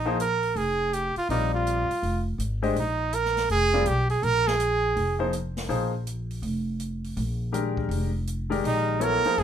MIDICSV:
0, 0, Header, 1, 6, 480
1, 0, Start_track
1, 0, Tempo, 366748
1, 1694, Time_signature, 4, 2, 24, 8
1, 12345, End_track
2, 0, Start_track
2, 0, Title_t, "Trumpet"
2, 0, Program_c, 0, 56
2, 0, Note_on_c, 0, 63, 79
2, 235, Note_off_c, 0, 63, 0
2, 272, Note_on_c, 0, 70, 87
2, 743, Note_on_c, 0, 68, 89
2, 763, Note_off_c, 0, 70, 0
2, 1228, Note_on_c, 0, 67, 78
2, 1248, Note_off_c, 0, 68, 0
2, 1528, Note_off_c, 0, 67, 0
2, 1540, Note_on_c, 0, 65, 79
2, 1691, Note_off_c, 0, 65, 0
2, 1702, Note_on_c, 0, 63, 85
2, 1984, Note_off_c, 0, 63, 0
2, 2025, Note_on_c, 0, 65, 80
2, 2921, Note_off_c, 0, 65, 0
2, 3659, Note_on_c, 0, 63, 90
2, 4120, Note_on_c, 0, 70, 96
2, 4139, Note_off_c, 0, 63, 0
2, 4587, Note_off_c, 0, 70, 0
2, 4601, Note_on_c, 0, 68, 95
2, 5073, Note_on_c, 0, 67, 83
2, 5092, Note_off_c, 0, 68, 0
2, 5364, Note_off_c, 0, 67, 0
2, 5371, Note_on_c, 0, 68, 83
2, 5544, Note_on_c, 0, 70, 97
2, 5564, Note_off_c, 0, 68, 0
2, 5856, Note_on_c, 0, 68, 86
2, 5876, Note_off_c, 0, 70, 0
2, 6809, Note_off_c, 0, 68, 0
2, 11342, Note_on_c, 0, 63, 96
2, 11828, Note_on_c, 0, 70, 97
2, 11847, Note_off_c, 0, 63, 0
2, 12289, Note_on_c, 0, 68, 91
2, 12308, Note_off_c, 0, 70, 0
2, 12345, Note_off_c, 0, 68, 0
2, 12345, End_track
3, 0, Start_track
3, 0, Title_t, "Grand piano"
3, 0, Program_c, 1, 0
3, 72, Note_on_c, 1, 53, 59
3, 74, Note_on_c, 1, 63, 58
3, 79, Note_on_c, 1, 68, 53
3, 83, Note_on_c, 1, 58, 54
3, 86, Note_on_c, 1, 72, 66
3, 231, Note_off_c, 1, 53, 0
3, 232, Note_off_c, 1, 63, 0
3, 235, Note_off_c, 1, 68, 0
3, 237, Note_off_c, 1, 58, 0
3, 238, Note_off_c, 1, 72, 0
3, 1707, Note_on_c, 1, 55, 51
3, 1711, Note_on_c, 1, 60, 47
3, 1715, Note_on_c, 1, 70, 47
3, 1716, Note_on_c, 1, 65, 48
3, 1717, Note_on_c, 1, 74, 60
3, 2427, Note_off_c, 1, 55, 0
3, 2428, Note_off_c, 1, 60, 0
3, 2431, Note_off_c, 1, 65, 0
3, 2431, Note_off_c, 1, 70, 0
3, 2431, Note_off_c, 1, 74, 0
3, 3434, Note_on_c, 1, 62, 57
3, 3436, Note_on_c, 1, 56, 64
3, 3439, Note_on_c, 1, 67, 54
3, 3439, Note_on_c, 1, 72, 58
3, 3444, Note_on_c, 1, 75, 67
3, 3593, Note_off_c, 1, 62, 0
3, 3594, Note_off_c, 1, 56, 0
3, 3595, Note_off_c, 1, 67, 0
3, 3595, Note_off_c, 1, 72, 0
3, 3598, Note_off_c, 1, 75, 0
3, 4889, Note_on_c, 1, 55, 57
3, 4890, Note_on_c, 1, 60, 54
3, 4890, Note_on_c, 1, 65, 54
3, 4894, Note_on_c, 1, 70, 51
3, 4897, Note_on_c, 1, 74, 65
3, 5041, Note_off_c, 1, 55, 0
3, 5041, Note_off_c, 1, 60, 0
3, 5041, Note_off_c, 1, 65, 0
3, 5043, Note_off_c, 1, 70, 0
3, 5045, Note_off_c, 1, 74, 0
3, 6793, Note_on_c, 1, 53, 57
3, 6801, Note_on_c, 1, 58, 56
3, 6804, Note_on_c, 1, 68, 53
3, 6804, Note_on_c, 1, 72, 66
3, 6805, Note_on_c, 1, 63, 52
3, 6952, Note_off_c, 1, 53, 0
3, 6956, Note_off_c, 1, 58, 0
3, 6958, Note_off_c, 1, 63, 0
3, 6958, Note_off_c, 1, 68, 0
3, 6958, Note_off_c, 1, 72, 0
3, 7444, Note_on_c, 1, 58, 48
3, 7444, Note_on_c, 1, 63, 48
3, 7449, Note_on_c, 1, 72, 61
3, 7450, Note_on_c, 1, 68, 49
3, 7452, Note_on_c, 1, 53, 55
3, 7725, Note_off_c, 1, 58, 0
3, 7726, Note_off_c, 1, 63, 0
3, 7728, Note_off_c, 1, 72, 0
3, 7729, Note_off_c, 1, 68, 0
3, 7730, Note_off_c, 1, 53, 0
3, 9846, Note_on_c, 1, 51, 53
3, 9851, Note_on_c, 1, 67, 51
3, 9852, Note_on_c, 1, 56, 45
3, 9858, Note_on_c, 1, 62, 45
3, 9860, Note_on_c, 1, 70, 57
3, 10575, Note_off_c, 1, 51, 0
3, 10578, Note_off_c, 1, 56, 0
3, 10578, Note_off_c, 1, 67, 0
3, 10582, Note_off_c, 1, 62, 0
3, 10583, Note_off_c, 1, 70, 0
3, 11121, Note_on_c, 1, 51, 56
3, 11126, Note_on_c, 1, 56, 57
3, 11130, Note_on_c, 1, 74, 52
3, 11134, Note_on_c, 1, 67, 59
3, 11137, Note_on_c, 1, 70, 68
3, 11739, Note_off_c, 1, 51, 0
3, 11741, Note_off_c, 1, 56, 0
3, 11743, Note_off_c, 1, 74, 0
3, 11745, Note_off_c, 1, 67, 0
3, 11746, Note_off_c, 1, 70, 0
3, 11778, Note_on_c, 1, 54, 52
3, 11781, Note_on_c, 1, 59, 49
3, 11783, Note_on_c, 1, 64, 49
3, 11783, Note_on_c, 1, 69, 47
3, 11785, Note_on_c, 1, 73, 58
3, 12052, Note_off_c, 1, 54, 0
3, 12054, Note_off_c, 1, 59, 0
3, 12055, Note_off_c, 1, 64, 0
3, 12055, Note_off_c, 1, 69, 0
3, 12056, Note_off_c, 1, 73, 0
3, 12109, Note_on_c, 1, 58, 46
3, 12111, Note_on_c, 1, 63, 46
3, 12113, Note_on_c, 1, 53, 50
3, 12114, Note_on_c, 1, 68, 44
3, 12119, Note_on_c, 1, 72, 53
3, 12345, Note_off_c, 1, 53, 0
3, 12345, Note_off_c, 1, 58, 0
3, 12345, Note_off_c, 1, 63, 0
3, 12345, Note_off_c, 1, 68, 0
3, 12345, Note_off_c, 1, 72, 0
3, 12345, End_track
4, 0, Start_track
4, 0, Title_t, "Upright bass"
4, 0, Program_c, 2, 32
4, 0, Note_on_c, 2, 34, 81
4, 685, Note_off_c, 2, 34, 0
4, 725, Note_on_c, 2, 29, 80
4, 1465, Note_off_c, 2, 29, 0
4, 1687, Note_on_c, 2, 34, 82
4, 2426, Note_off_c, 2, 34, 0
4, 2651, Note_on_c, 2, 29, 72
4, 3099, Note_off_c, 2, 29, 0
4, 3117, Note_on_c, 2, 32, 72
4, 3571, Note_off_c, 2, 32, 0
4, 3609, Note_on_c, 2, 34, 78
4, 4523, Note_off_c, 2, 34, 0
4, 4581, Note_on_c, 2, 29, 74
4, 5024, Note_off_c, 2, 29, 0
4, 5045, Note_on_c, 2, 35, 75
4, 5496, Note_off_c, 2, 35, 0
4, 5528, Note_on_c, 2, 34, 85
4, 6443, Note_off_c, 2, 34, 0
4, 6495, Note_on_c, 2, 29, 78
4, 7406, Note_off_c, 2, 29, 0
4, 7442, Note_on_c, 2, 34, 79
4, 8360, Note_off_c, 2, 34, 0
4, 8405, Note_on_c, 2, 29, 72
4, 9321, Note_off_c, 2, 29, 0
4, 9379, Note_on_c, 2, 34, 82
4, 10288, Note_off_c, 2, 34, 0
4, 10322, Note_on_c, 2, 29, 79
4, 11239, Note_off_c, 2, 29, 0
4, 11307, Note_on_c, 2, 34, 85
4, 12035, Note_off_c, 2, 34, 0
4, 12272, Note_on_c, 2, 29, 73
4, 12345, Note_off_c, 2, 29, 0
4, 12345, End_track
5, 0, Start_track
5, 0, Title_t, "Muted upright bass strokes"
5, 1516, Note_on_c, 9, 29, 36
5, 1647, Note_off_c, 9, 29, 0
5, 2477, Note_on_c, 9, 29, 35
5, 2608, Note_off_c, 9, 29, 0
5, 12091, Note_on_c, 9, 29, 35
5, 12222, Note_off_c, 9, 29, 0
5, 12345, End_track
6, 0, Start_track
6, 0, Title_t, "Drums"
6, 258, Note_on_c, 9, 42, 41
6, 389, Note_off_c, 9, 42, 0
6, 560, Note_on_c, 9, 46, 33
6, 691, Note_off_c, 9, 46, 0
6, 738, Note_on_c, 9, 46, 35
6, 868, Note_off_c, 9, 46, 0
6, 1220, Note_on_c, 9, 42, 46
6, 1351, Note_off_c, 9, 42, 0
6, 1518, Note_on_c, 9, 46, 33
6, 1649, Note_off_c, 9, 46, 0
6, 1701, Note_on_c, 9, 46, 39
6, 1832, Note_off_c, 9, 46, 0
6, 2181, Note_on_c, 9, 42, 45
6, 2311, Note_off_c, 9, 42, 0
6, 2496, Note_on_c, 9, 46, 35
6, 2627, Note_off_c, 9, 46, 0
6, 2659, Note_on_c, 9, 46, 38
6, 2790, Note_off_c, 9, 46, 0
6, 3135, Note_on_c, 9, 42, 47
6, 3266, Note_off_c, 9, 42, 0
6, 3447, Note_on_c, 9, 46, 35
6, 3578, Note_off_c, 9, 46, 0
6, 3616, Note_on_c, 9, 46, 42
6, 3747, Note_off_c, 9, 46, 0
6, 4092, Note_on_c, 9, 42, 45
6, 4223, Note_off_c, 9, 42, 0
6, 4258, Note_on_c, 9, 38, 27
6, 4389, Note_off_c, 9, 38, 0
6, 4409, Note_on_c, 9, 46, 32
6, 4410, Note_on_c, 9, 38, 37
6, 4540, Note_off_c, 9, 46, 0
6, 4541, Note_off_c, 9, 38, 0
6, 4572, Note_on_c, 9, 46, 38
6, 4703, Note_off_c, 9, 46, 0
6, 5047, Note_on_c, 9, 42, 47
6, 5178, Note_off_c, 9, 42, 0
6, 5360, Note_on_c, 9, 46, 34
6, 5491, Note_off_c, 9, 46, 0
6, 5536, Note_on_c, 9, 46, 41
6, 5667, Note_off_c, 9, 46, 0
6, 5856, Note_on_c, 9, 38, 49
6, 5987, Note_off_c, 9, 38, 0
6, 6016, Note_on_c, 9, 42, 44
6, 6147, Note_off_c, 9, 42, 0
6, 6499, Note_on_c, 9, 46, 40
6, 6630, Note_off_c, 9, 46, 0
6, 6974, Note_on_c, 9, 42, 45
6, 7105, Note_off_c, 9, 42, 0
6, 7287, Note_on_c, 9, 38, 47
6, 7287, Note_on_c, 9, 46, 33
6, 7418, Note_off_c, 9, 38, 0
6, 7418, Note_off_c, 9, 46, 0
6, 7460, Note_on_c, 9, 46, 41
6, 7591, Note_off_c, 9, 46, 0
6, 7942, Note_on_c, 9, 42, 44
6, 8073, Note_off_c, 9, 42, 0
6, 8253, Note_on_c, 9, 46, 33
6, 8384, Note_off_c, 9, 46, 0
6, 8410, Note_on_c, 9, 46, 40
6, 8541, Note_off_c, 9, 46, 0
6, 8895, Note_on_c, 9, 42, 42
6, 9026, Note_off_c, 9, 42, 0
6, 9219, Note_on_c, 9, 46, 33
6, 9349, Note_off_c, 9, 46, 0
6, 9381, Note_on_c, 9, 46, 43
6, 9512, Note_off_c, 9, 46, 0
6, 9868, Note_on_c, 9, 42, 44
6, 9999, Note_off_c, 9, 42, 0
6, 10174, Note_on_c, 9, 36, 48
6, 10305, Note_off_c, 9, 36, 0
6, 10355, Note_on_c, 9, 46, 43
6, 10486, Note_off_c, 9, 46, 0
6, 10829, Note_on_c, 9, 42, 46
6, 10960, Note_off_c, 9, 42, 0
6, 11149, Note_on_c, 9, 46, 37
6, 11280, Note_off_c, 9, 46, 0
6, 11321, Note_on_c, 9, 46, 44
6, 11452, Note_off_c, 9, 46, 0
6, 11792, Note_on_c, 9, 42, 46
6, 11923, Note_off_c, 9, 42, 0
6, 12098, Note_on_c, 9, 46, 33
6, 12229, Note_off_c, 9, 46, 0
6, 12277, Note_on_c, 9, 46, 39
6, 12345, Note_off_c, 9, 46, 0
6, 12345, End_track
0, 0, End_of_file